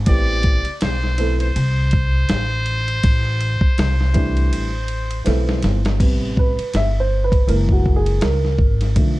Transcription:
0.06 0.63 A1 loud
0.06 0.61 E3 medium
0.06 0.61 A3 medium
0.06 0.61 B3 medium
0.06 0.62 C4 medium
0.06 0.62 G4 medium
0.06 0.78 D5 loud
0.06 kick loud
0.06 ride medium
0.43 kick medium
0.43 ride medium
0.65 muted upright bass stroke medium
0.65 ride soft
0.81 1.52 B1 medium
0.81 1.37 C5 loud
0.81 snare loud
0.81 hi-hat pedal medium
0.81 ride medium
1.04 snare soft
1.18 1.46 E3 medium
1.18 1.46 A3 medium
1.18 1.46 B3 medium
1.18 1.47 C4 medium
1.18 1.47 A4 medium
1.18 ride medium
1.40 5.23 C5 loud
1.40 ride soft
1.56 2.26 C2 medium
1.56 ride medium
1.91 kick medium
1.91 ride medium
2.29 3.00 A1 loud
2.29 snare loud
2.29 hi-hat pedal soft
2.29 ride medium
2.66 ride medium
2.88 ride soft
3.03 3.59 A1 loud
3.03 kick loud
3.03 ride medium
3.41 ride medium
3.61 muted upright bass stroke soft
3.61 kick loud
3.78 4.53 C2 medium
3.78 snare loud
3.78 hi-hat pedal medium
3.78 ride medium
4.01 snare soft
4.13 4.68 E3 medium
4.13 4.68 G3 medium
4.13 4.68 A3 medium
4.13 4.69 C4 medium
4.13 4.69 D4 medium
4.13 kick medium
4.13 ride medium
4.37 ride soft
4.53 5.23 A1 medium
4.53 ride medium
4.88 ride medium
5.11 ride soft
5.24 5.61 B1 medium
5.24 5.79 E3 medium
5.24 5.79 A3 medium
5.24 5.80 B3 medium
5.24 5.80 C4 medium
5.24 5.80 A4 medium
5.24 snare medium
5.24 hi-hat pedal medium
5.24 ride medium
5.49 snare medium
5.62 5.98 G1 loud
5.62 snare medium
5.62 ride medium
5.85 snare medium
5.85 ride soft
6.00 6.56 A1 medium
6.00 6.52 C3 soft
6.00 6.52 G3 soft
6.00 6.52 B3 medium
6.00 kick loud
6.00 crash medium
6.00 ride medium
6.37 6.72 B4 medium
6.37 kick medium
6.59 muted upright bass stroke soft
6.59 ride medium
6.74 7.44 G1 medium
6.74 7.00 E5 loud
6.74 snare loud
6.74 hi-hat pedal soft
6.74 ride medium
7.00 7.25 C5 medium
7.24 7.49 B4 medium
7.32 kick medium
7.32 ride medium
7.47 8.18 F#1 loud
7.47 8.55 E3 medium
7.47 8.55 G#3 medium
7.47 8.55 A#3 medium
7.47 7.54 A#4 medium
7.47 ride medium
7.69 7.98 F#4 medium
7.69 kick medium
7.86 kick medium
7.96 8.22 G#4 medium
8.06 ride medium
8.21 8.60 C#2 medium
8.21 8.92 A#4 medium
8.21 snare loud
8.21 hi-hat pedal soft
8.21 ride medium
8.45 snare soft
8.59 8.94 G#1 medium
8.59 kick medium
8.81 snare soft
8.81 ride medium
8.95 9.20 B1 loud
8.95 9.20 D3 soft
8.95 9.20 F3 soft
8.95 9.20 A3 medium
8.95 kick loud
8.95 ride medium

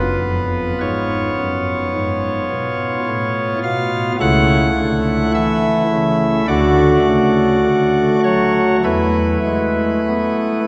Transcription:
0.00 0.17 F#1 medium
0.00 0.17 F#2 medium
0.00 4.16 B3 medium
0.00 4.16 F4 medium
0.00 0.78 B4 loud
0.24 0.73 F2 medium
0.81 1.30 G#2 medium
0.81 3.59 C#5 loud
1.38 1.86 F#2 medium
1.94 2.42 G#2 medium
2.51 2.98 B2 medium
3.07 3.55 A2 medium
3.63 4.12 B2 medium
3.63 4.12 F5 loud
4.20 4.69 C#2 medium
4.20 4.69 C#3 loud
4.20 6.45 A3 medium
4.20 6.45 E4 medium
4.20 5.32 F#5 loud
4.77 5.26 D3 medium
5.34 5.83 E3 loud
5.34 6.46 E5 loud
5.91 6.40 C#3 medium
6.47 6.97 D2 medium
6.47 6.98 D3 medium
6.47 8.81 A3 medium
6.47 8.81 F#4 medium
6.47 8.20 D5 loud
7.06 7.56 C#3 medium
7.65 8.16 D3 medium
8.24 8.76 F#3 medium
8.24 8.76 C#5 loud
8.84 9.38 E2 medium
8.84 9.37 E3 medium
8.84 10.67 A3 medium
8.84 10.67 E4 medium
8.84 10.67 B4 medium
9.46 9.99 G#3 medium
10.08 10.60 B3 medium

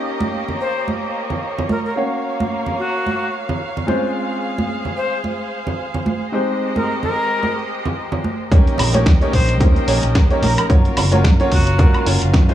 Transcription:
0.00 1.94 A#3 medium
0.00 1.95 A#3 medium
0.00 1.94 C#4 medium
0.00 1.94 D#4 medium
0.00 1.93 G4 medium
0.00 1.95 G4 medium
0.00 1.95 C#5 medium
0.00 3.84 C#5 medium
0.00 1.93 D#5 medium
0.21 high conga medium
0.48 low conga medium
0.61 0.82 C5 medium
0.88 high conga medium
1.30 low conga medium
1.58 low conga medium
1.69 1.80 A#4 medium
1.69 high conga medium
1.85 1.93 A#4 medium
1.96 3.85 A#3 medium
1.96 3.86 A#3 medium
1.96 3.85 C#4 medium
1.96 3.85 F#4 medium
1.96 3.86 C#5 medium
1.96 3.85 F5 medium
1.96 6.30 F5 medium
2.40 high conga medium
2.66 low conga medium
2.79 3.33 F#4 medium
3.06 high conga medium
3.49 low conga medium
3.77 low conga medium
3.87 6.30 G#3 medium
3.87 6.30 C4 medium
3.87 6.30 C#4 medium
3.87 6.31 F4 medium
3.87 6.31 G#4 medium
3.87 8.48 C5 medium
3.87 6.31 C5 medium
3.87 high conga medium
4.58 high conga medium
4.85 low conga medium
4.97 5.18 C5 medium
5.24 high conga medium
5.67 low conga medium
5.94 low conga medium
6.06 high conga medium
6.32 8.48 G#3 medium
6.32 8.50 G#3 medium
6.32 8.49 C4 medium
6.32 8.49 D#4 medium
6.32 8.49 G4 medium
6.32 8.50 G4 medium
6.32 8.49 C5 medium
6.32 8.50 D#5 medium
6.76 6.96 A#4 medium
6.76 high conga medium
7.03 7.58 A#4 medium
7.03 low conga medium
7.43 high conga medium
7.86 low conga medium
8.12 low conga medium
8.24 high conga medium
8.51 8.64 D#2 loud
8.51 8.90 A#3 medium
8.51 8.90 C#4 medium
8.51 8.91 D#4 medium
8.51 8.91 G4 medium
8.51 12.54 A#4 medium
8.51 8.91 C#5 medium
8.51 10.68 D#5 medium
8.51 10.68 G5 medium
8.51 kick loud
8.51 closed hi-hat medium
8.67 closed hi-hat soft
8.78 9.02 A#1 medium
8.78 open hi-hat loud
8.78 low conga medium
8.78 high woodblock medium
8.94 9.03 A#3 medium
8.94 9.03 C#4 medium
8.94 9.03 D#4 medium
8.94 9.03 G4 medium
8.94 9.04 C#5 loud
8.94 closed hi-hat medium
8.94 high conga medium
9.06 9.19 D#2 loud
9.06 kick loud
9.06 snare loud
9.06 closed hi-hat medium
9.21 9.58 A#3 medium
9.21 9.58 C#4 medium
9.21 9.58 D#4 medium
9.21 9.58 G4 medium
9.21 9.58 C#5 loud
9.21 closed hi-hat soft
9.33 9.60 A#1 medium
9.33 9.55 C5 medium
9.33 kick medium
9.33 open hi-hat loud
9.49 closed hi-hat medium
9.60 9.74 D#2 medium
9.60 9.85 A#3 loud
9.60 9.85 C#4 medium
9.60 9.85 D#4 medium
9.60 9.85 G4 medium
9.60 9.85 C5 loud
9.60 kick loud
9.60 closed hi-hat medium
9.60 high conga medium
9.76 closed hi-hat soft
9.87 10.01 A#1 loud
9.87 10.27 A#3 medium
9.87 10.27 C#4 medium
9.87 10.27 D#4 medium
9.87 10.27 G4 medium
9.87 10.27 C#5 medium
9.87 open hi-hat loud
10.03 10.13 A#1 loud
10.03 closed hi-hat medium
10.15 10.28 D#2 loud
10.15 kick loud
10.15 snare loud
10.15 closed hi-hat medium
10.30 10.67 A#3 medium
10.30 10.67 C#4 medium
10.30 10.67 D#4 medium
10.30 10.67 G4 medium
10.30 10.67 C#5 loud
10.30 closed hi-hat soft
10.42 10.55 A#1 medium
10.42 10.52 A#4 medium
10.42 open hi-hat medium
10.42 high conga loud
10.58 10.66 A#4 medium
10.58 closed hi-hat medium
10.58 high woodblock medium
10.69 10.83 F#2 loud
10.69 11.08 A#3 medium
10.69 11.08 C#4 medium
10.69 11.09 F4 medium
10.69 11.09 F#4 medium
10.69 11.09 C#5 medium
10.69 12.54 F5 medium
10.69 kick loud
10.69 closed hi-hat medium
10.85 closed hi-hat soft
10.97 11.21 F#1 medium
10.97 open hi-hat loud
10.97 low conga loud
10.97 high woodblock medium
11.12 11.21 A#3 loud
11.12 11.21 C#4 medium
11.12 11.21 F4 medium
11.12 11.22 F#4 medium
11.12 11.22 C#5 loud
11.12 closed hi-hat medium
11.12 high conga medium
11.24 11.37 F#2 loud
11.24 kick loud
11.24 snare loud
11.24 closed hi-hat medium
11.40 11.76 A#3 medium
11.40 11.76 C#4 medium
11.40 11.76 F4 medium
11.40 11.76 F#4 medium
11.40 11.77 C#5 loud
11.40 closed hi-hat soft
11.52 11.81 F#1 medium
11.52 12.06 F#4 medium
11.52 kick medium
11.52 open hi-hat loud
11.67 closed hi-hat medium
11.78 11.92 F#2 loud
11.78 12.03 A#3 medium
11.78 12.03 C#4 medium
11.78 12.03 F4 medium
11.78 12.03 F#4 medium
11.78 12.04 A#4 loud
11.78 kick loud
11.78 closed hi-hat medium
11.78 high conga medium
11.94 closed hi-hat soft
11.94 high woodblock medium
12.06 12.19 F#1 loud
12.06 12.45 A#3 medium
12.06 12.45 C#4 medium
12.06 12.45 F4 medium
12.06 12.45 F#4 medium
12.06 12.46 C#5 medium
12.06 open hi-hat loud
12.22 12.32 F#1 loud
12.22 closed hi-hat soft
12.34 12.46 F#2 loud
12.34 kick loud
12.34 snare loud
12.34 closed hi-hat medium
12.49 12.54 G#3 medium
12.49 12.54 C4 medium
12.49 12.54 C#4 medium
12.49 12.54 F4 medium
12.49 12.54 C5 loud
12.49 closed hi-hat soft

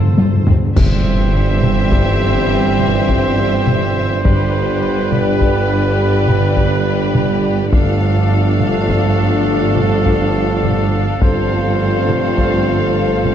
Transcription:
0.00 0.42 F3 medium
0.00 0.42 A3 medium
0.00 0.43 C4 medium
0.00 0.43 F4 medium
0.00 0.43 A4 medium
0.00 0.52 C5 medium
0.06 0.11 G2 medium
0.12 0.18 G2 medium
0.17 0.29 G1 soft
0.17 0.26 G1 medium
0.17 0.26 G2 soft
0.17 0.26 G2 medium
0.17 0.26 A3 medium
0.17 0.27 F4 soft
0.17 taiko high medium
0.27 0.33 G2 medium
0.35 0.40 G2 medium
0.41 0.47 G2 medium
0.47 0.59 G1 medium
0.47 0.55 G1 soft
0.47 0.55 G2 soft
0.47 0.56 G2 loud
0.47 0.55 A3 medium
0.47 0.57 C4 medium
0.47 taiko low loud
0.57 0.63 G2 medium
0.65 0.72 G2 loud
0.75 4.21 G1 medium
0.75 4.21 G2 medium
0.75 4.20 E3 medium
0.75 4.20 G3 medium
0.75 4.20 C4 medium
0.75 4.21 C4 medium
0.75 4.21 G4 medium
0.75 5.13 C5 medium
0.75 4.20 E5 medium
0.75 concert bass drum medium
0.75 taiko loud
0.75 crash medium
1.63 taiko mid medium
1.92 taiko medium
2.80 taiko mid medium
3.09 taiko medium
3.67 taiko mid medium
4.23 7.69 G1 medium
4.23 7.69 G2 medium
4.23 7.68 D3 medium
4.23 7.68 G3 medium
4.23 7.69 D4 medium
4.23 7.69 G4 medium
4.23 7.70 G4 medium
4.23 7.69 B4 medium
4.23 7.73 D5 medium
4.23 taiko medium
5.12 7.45 B4 medium
5.12 taiko mid medium
5.41 taiko medium
6.28 taiko mid medium
6.57 taiko medium
7.15 taiko mid medium
7.72 11.17 G1 medium
7.72 11.05 G1 medium
7.72 11.18 G2 medium
7.72 11.05 F3 medium
7.72 11.05 A3 medium
7.72 11.17 D4 medium
7.72 11.04 D4 medium
7.72 11.04 F4 medium
7.72 11.23 A4 medium
7.72 11.17 A4 medium
7.72 11.18 F5 medium
7.72 taiko medium
8.60 taiko mid soft
8.89 taiko medium
9.76 taiko mid soft
10.05 taiko medium
10.64 taiko mid medium
11.21 13.35 G1 medium
11.21 13.35 G2 medium
11.21 13.35 F3 medium
11.21 13.35 A3 medium
11.21 13.35 C4 medium
11.21 13.35 F4 medium
11.21 13.35 A4 medium
11.21 13.35 C5 medium
11.21 13.35 F5 medium
11.21 taiko medium
12.09 taiko mid soft
12.38 taiko medium
13.25 taiko mid soft

